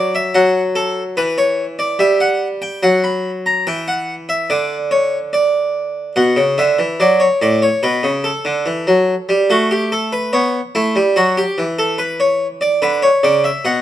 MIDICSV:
0, 0, Header, 1, 2, 480
1, 0, Start_track
1, 0, Key_signature, 1, "minor"
1, 0, Tempo, 829876
1, 1636, Time_signature, 4, 2, 24, 8
1, 7992, End_track
2, 0, Start_track
2, 0, Title_t, "Harpsichord"
2, 0, Program_c, 0, 6
2, 0, Note_on_c, 0, 54, 62
2, 0, Note_on_c, 0, 74, 70
2, 81, Note_off_c, 0, 74, 0
2, 86, Note_on_c, 0, 76, 73
2, 190, Note_off_c, 0, 54, 0
2, 200, Note_off_c, 0, 76, 0
2, 200, Note_on_c, 0, 54, 60
2, 200, Note_on_c, 0, 78, 78
2, 349, Note_off_c, 0, 78, 0
2, 437, Note_on_c, 0, 69, 77
2, 586, Note_off_c, 0, 69, 0
2, 665, Note_off_c, 0, 54, 0
2, 677, Note_on_c, 0, 71, 78
2, 679, Note_on_c, 0, 52, 68
2, 795, Note_off_c, 0, 71, 0
2, 797, Note_on_c, 0, 73, 76
2, 946, Note_off_c, 0, 73, 0
2, 1035, Note_on_c, 0, 74, 70
2, 1142, Note_off_c, 0, 52, 0
2, 1152, Note_off_c, 0, 74, 0
2, 1152, Note_on_c, 0, 55, 61
2, 1153, Note_on_c, 0, 76, 75
2, 1270, Note_off_c, 0, 76, 0
2, 1275, Note_on_c, 0, 78, 71
2, 1424, Note_off_c, 0, 78, 0
2, 1514, Note_on_c, 0, 79, 80
2, 1619, Note_off_c, 0, 55, 0
2, 1631, Note_off_c, 0, 79, 0
2, 1635, Note_on_c, 0, 54, 64
2, 1637, Note_on_c, 0, 78, 81
2, 1753, Note_off_c, 0, 78, 0
2, 1757, Note_on_c, 0, 83, 77
2, 1906, Note_off_c, 0, 83, 0
2, 2002, Note_on_c, 0, 82, 76
2, 2102, Note_off_c, 0, 54, 0
2, 2116, Note_off_c, 0, 82, 0
2, 2123, Note_on_c, 0, 52, 65
2, 2123, Note_on_c, 0, 79, 79
2, 2236, Note_off_c, 0, 79, 0
2, 2243, Note_on_c, 0, 78, 72
2, 2390, Note_off_c, 0, 78, 0
2, 2481, Note_on_c, 0, 76, 75
2, 2586, Note_off_c, 0, 52, 0
2, 2596, Note_off_c, 0, 76, 0
2, 2602, Note_on_c, 0, 74, 78
2, 2603, Note_on_c, 0, 50, 62
2, 2750, Note_off_c, 0, 74, 0
2, 2841, Note_on_c, 0, 73, 69
2, 2989, Note_off_c, 0, 73, 0
2, 3084, Note_on_c, 0, 74, 73
2, 3541, Note_off_c, 0, 50, 0
2, 3550, Note_off_c, 0, 74, 0
2, 3563, Note_on_c, 0, 78, 51
2, 3564, Note_on_c, 0, 47, 59
2, 3680, Note_off_c, 0, 47, 0
2, 3681, Note_on_c, 0, 49, 52
2, 3712, Note_off_c, 0, 78, 0
2, 3799, Note_off_c, 0, 49, 0
2, 3805, Note_on_c, 0, 76, 51
2, 3807, Note_on_c, 0, 50, 56
2, 3922, Note_off_c, 0, 50, 0
2, 3925, Note_on_c, 0, 52, 59
2, 3954, Note_off_c, 0, 76, 0
2, 4041, Note_off_c, 0, 52, 0
2, 4048, Note_on_c, 0, 54, 59
2, 4049, Note_on_c, 0, 74, 55
2, 4163, Note_off_c, 0, 74, 0
2, 4164, Note_on_c, 0, 73, 46
2, 4195, Note_off_c, 0, 54, 0
2, 4280, Note_off_c, 0, 73, 0
2, 4289, Note_on_c, 0, 45, 56
2, 4290, Note_on_c, 0, 74, 53
2, 4403, Note_off_c, 0, 74, 0
2, 4409, Note_on_c, 0, 73, 50
2, 4437, Note_off_c, 0, 45, 0
2, 4524, Note_off_c, 0, 73, 0
2, 4528, Note_on_c, 0, 47, 59
2, 4530, Note_on_c, 0, 71, 52
2, 4644, Note_off_c, 0, 47, 0
2, 4647, Note_on_c, 0, 49, 55
2, 4679, Note_off_c, 0, 71, 0
2, 4766, Note_on_c, 0, 69, 49
2, 4797, Note_off_c, 0, 49, 0
2, 4887, Note_on_c, 0, 50, 59
2, 5005, Note_off_c, 0, 50, 0
2, 5008, Note_on_c, 0, 52, 55
2, 5126, Note_off_c, 0, 52, 0
2, 5132, Note_on_c, 0, 54, 54
2, 5281, Note_off_c, 0, 54, 0
2, 5373, Note_on_c, 0, 55, 63
2, 5469, Note_off_c, 0, 69, 0
2, 5489, Note_off_c, 0, 55, 0
2, 5494, Note_on_c, 0, 57, 55
2, 5497, Note_on_c, 0, 66, 62
2, 5611, Note_off_c, 0, 66, 0
2, 5617, Note_on_c, 0, 67, 55
2, 5731, Note_off_c, 0, 67, 0
2, 5739, Note_on_c, 0, 69, 62
2, 5853, Note_off_c, 0, 69, 0
2, 5857, Note_on_c, 0, 71, 60
2, 5960, Note_off_c, 0, 57, 0
2, 5972, Note_off_c, 0, 71, 0
2, 5974, Note_on_c, 0, 73, 64
2, 5976, Note_on_c, 0, 59, 58
2, 6123, Note_off_c, 0, 73, 0
2, 6125, Note_off_c, 0, 59, 0
2, 6218, Note_on_c, 0, 57, 61
2, 6218, Note_on_c, 0, 64, 62
2, 6333, Note_off_c, 0, 57, 0
2, 6337, Note_on_c, 0, 55, 56
2, 6366, Note_off_c, 0, 64, 0
2, 6452, Note_off_c, 0, 55, 0
2, 6456, Note_on_c, 0, 66, 68
2, 6458, Note_on_c, 0, 54, 61
2, 6572, Note_off_c, 0, 66, 0
2, 6579, Note_on_c, 0, 67, 62
2, 6605, Note_off_c, 0, 54, 0
2, 6698, Note_on_c, 0, 52, 58
2, 6726, Note_off_c, 0, 67, 0
2, 6817, Note_on_c, 0, 69, 66
2, 6931, Note_on_c, 0, 71, 60
2, 6932, Note_off_c, 0, 69, 0
2, 7049, Note_off_c, 0, 71, 0
2, 7056, Note_on_c, 0, 73, 61
2, 7204, Note_off_c, 0, 73, 0
2, 7294, Note_on_c, 0, 74, 70
2, 7393, Note_off_c, 0, 52, 0
2, 7410, Note_off_c, 0, 74, 0
2, 7415, Note_on_c, 0, 50, 62
2, 7416, Note_on_c, 0, 71, 68
2, 7531, Note_off_c, 0, 71, 0
2, 7533, Note_on_c, 0, 73, 67
2, 7562, Note_off_c, 0, 50, 0
2, 7649, Note_off_c, 0, 73, 0
2, 7654, Note_on_c, 0, 74, 68
2, 7655, Note_on_c, 0, 49, 60
2, 7769, Note_off_c, 0, 74, 0
2, 7775, Note_on_c, 0, 76, 64
2, 7802, Note_off_c, 0, 49, 0
2, 7888, Note_off_c, 0, 76, 0
2, 7894, Note_on_c, 0, 47, 66
2, 7896, Note_on_c, 0, 78, 74
2, 7992, Note_off_c, 0, 47, 0
2, 7992, Note_off_c, 0, 78, 0
2, 7992, End_track
0, 0, End_of_file